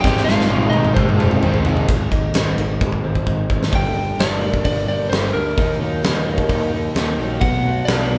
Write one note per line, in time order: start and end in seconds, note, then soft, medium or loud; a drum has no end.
0.01 0.23 G#1 medium
0.01 0.47 G#2 medium
0.01 0.26 G#2 loud
0.01 0.47 D#3 medium
0.01 0.26 D#3 loud
0.01 0.27 G#3 loud
0.01 0.26 C4 loud
0.01 0.24 G5 loud
0.01 kick loud
0.05 0.25 D#4 loud
0.05 0.27 G4 medium
0.05 snare medium
0.17 snare medium
0.25 0.46 G#1 medium
0.25 0.49 G#2 medium
0.25 0.50 D#3 medium
0.25 0.50 G#3 medium
0.25 0.48 G#3 medium
0.25 0.49 C4 medium
0.25 0.49 D#4 medium
0.25 0.73 F5 loud
0.29 0.71 F4 medium
0.29 snare medium
0.40 snare medium
0.48 0.69 G#1 medium
0.48 0.96 G#2 loud
0.48 0.72 G#2 medium
0.48 0.95 D#3 loud
0.48 0.73 D#3 medium
0.48 0.73 G#3 loud
0.48 0.73 G#3 medium
0.48 0.72 C4 loud
0.48 0.71 D#4 loud
0.48 high tom medium
0.63 high tom medium
0.70 0.92 G#1 medium
0.70 1.42 C4 medium
0.70 1.43 D#4 medium
0.70 0.94 D#5 medium
0.70 high tom medium
0.74 0.95 G#2 medium
0.74 0.96 D#3 medium
0.74 1.42 G#3 medium
0.74 0.97 G#3 loud
0.74 0.95 D#4 medium
0.85 mid tom medium
0.94 1.15 G#1 medium
0.94 1.18 G#2 medium
0.94 1.19 D#3 medium
0.94 1.19 G#3 loud
0.94 1.60 C5 medium
0.94 kick medium
0.94 mid tom medium
0.98 1.62 C4 medium
1.09 mid tom medium
1.18 1.38 F1 medium
1.18 1.41 G#2 medium
1.18 1.41 D#3 medium
1.18 1.41 G#3 medium
1.18 1.42 C4 medium
1.18 1.43 D#4 medium
1.18 mid tom loud
1.31 mid tom medium
1.41 1.61 G#1 loud
1.41 1.64 G#2 loud
1.41 1.65 D#3 medium
1.41 1.87 D#3 medium
1.41 1.65 G#3 medium
1.41 1.67 G#3 medium
1.41 1.65 C4 medium
1.41 1.64 D#4 medium
1.41 mid tom loud
1.54 floor tom medium
1.65 1.84 F1 medium
1.65 1.87 G#2 loud
1.65 1.87 D#3 medium
1.65 1.87 G#3 medium
1.65 1.88 G#3 medium
1.65 1.88 C4 medium
1.65 1.87 D#4 medium
1.65 floor tom loud
1.77 floor tom loud
1.88 2.10 G#1 medium
1.88 2.10 G#2 medium
1.88 3.04 G#2 medium
1.88 2.10 D#3 medium
1.88 2.10 G#3 medium
1.88 kick loud
1.88 ride loud
2.11 2.33 G#1 medium
2.11 2.32 G#2 medium
2.11 2.32 D#3 medium
2.11 3.26 D#4 medium
2.11 kick medium
2.11 ride medium
2.34 2.57 G#1 medium
2.34 2.55 G#2 medium
2.34 2.56 D#3 medium
2.34 3.03 C4 medium
2.34 snare loud
2.34 ride medium
2.57 2.79 G#1 loud
2.57 2.78 G#2 medium
2.57 2.78 D#3 medium
2.57 3.74 D#3 medium
2.57 ride medium
2.81 3.03 G#1 loud
2.81 3.02 G#2 medium
2.81 3.02 D#3 medium
2.81 3.48 G#3 medium
2.81 kick loud
2.92 kick medium
3.04 3.26 G#1 medium
3.04 3.25 G#2 medium
3.04 3.25 D#3 medium
3.04 3.73 C4 medium
3.15 kick medium
3.27 3.71 G#1 medium
3.27 3.48 G#2 medium
3.27 3.48 D#3 medium
3.27 3.73 D#4 medium
3.27 kick medium
3.50 3.71 G#2 medium
3.50 3.71 D#3 medium
3.50 3.73 G#3 medium
3.50 kick medium
3.63 snare medium
3.72 4.11 G1 medium
3.72 3.94 G2 medium
3.72 3.94 D3 loud
3.72 3.94 G3 loud
3.72 4.22 G5 medium
3.72 kick loud
3.72 open hi-hat medium
3.95 4.16 G2 medium
3.95 4.17 D3 medium
3.95 4.18 G3 medium
4.18 4.57 G1 medium
4.18 4.40 G2 medium
4.18 4.40 D3 medium
4.18 4.41 G3 medium
4.18 5.35 D4 medium
4.18 4.63 D5 medium
4.18 snare loud
4.18 open hi-hat medium
4.42 4.63 G2 medium
4.42 4.64 D3 medium
4.42 4.65 G3 medium
4.42 4.88 A#3 medium
4.54 kick medium
4.64 4.84 G1 medium
4.64 4.85 G2 medium
4.64 4.86 D3 medium
4.64 4.86 G3 medium
4.64 4.87 D5 medium
4.64 kick medium
4.64 open hi-hat medium
4.86 5.07 G1 medium
4.86 5.09 G2 medium
4.86 5.09 D3 medium
4.86 5.09 G3 medium
4.86 5.58 A#3 medium
4.86 5.09 D5 medium
5.10 5.30 G1 medium
5.10 5.32 G2 loud
5.10 5.33 D3 medium
5.10 5.33 G3 loud
5.10 5.34 C5 medium
5.10 snare medium
5.10 open hi-hat soft
5.33 5.54 D2 medium
5.33 5.56 G2 medium
5.33 5.56 D3 medium
5.33 5.56 G3 medium
5.33 5.77 A#4 medium
5.57 5.77 D#2 medium
5.57 5.79 D#3 medium
5.57 5.79 A#3 medium
5.57 5.79 D#4 loud
5.57 kick loud
5.57 open hi-hat medium
5.80 6.00 D#2 medium
5.80 6.02 D#3 medium
5.80 6.95 F#3 medium
5.80 6.02 A#3 medium
5.80 6.02 D#4 loud
6.03 6.42 D#2 medium
6.03 6.24 D#3 medium
6.03 6.25 A#3 medium
6.03 6.26 D#4 medium
6.03 snare loud
6.03 open hi-hat medium
6.26 6.49 D#3 medium
6.26 6.50 A#3 medium
6.26 6.50 D#4 medium
6.38 kick medium
6.49 6.88 D#2 medium
6.49 6.72 D#3 medium
6.49 6.72 A#3 medium
6.49 6.73 D#4 medium
6.49 kick medium
6.49 open hi-hat medium
6.74 6.94 D#3 medium
6.74 6.95 A#3 medium
6.74 6.95 D#4 medium
6.95 7.15 D#2 medium
6.95 7.18 D#3 medium
6.95 7.19 A#3 loud
6.95 7.19 D#4 loud
6.95 snare medium
6.95 open hi-hat soft
7.18 7.38 A#1 medium
7.18 7.41 D#3 medium
7.18 7.42 F#3 medium
7.18 7.41 A#3 medium
7.18 7.41 D#4 medium
7.41 7.80 B1 medium
7.41 7.63 B2 medium
7.41 7.64 F#3 medium
7.41 7.64 B3 loud
7.41 7.89 F#5 medium
7.41 kick loud
7.41 open hi-hat medium
7.64 7.87 B2 medium
7.64 7.88 F#3 medium
7.64 7.87 B3 medium
7.85 8.18 B1 medium
7.85 8.09 B2 medium
7.85 8.09 F#3 medium
7.85 8.10 B3 medium
7.85 8.18 D4 medium
7.85 8.18 D5 medium
7.85 snare loud
7.85 open hi-hat medium
8.11 8.18 B2 medium
8.11 8.18 F#3 medium
8.11 8.18 B3 loud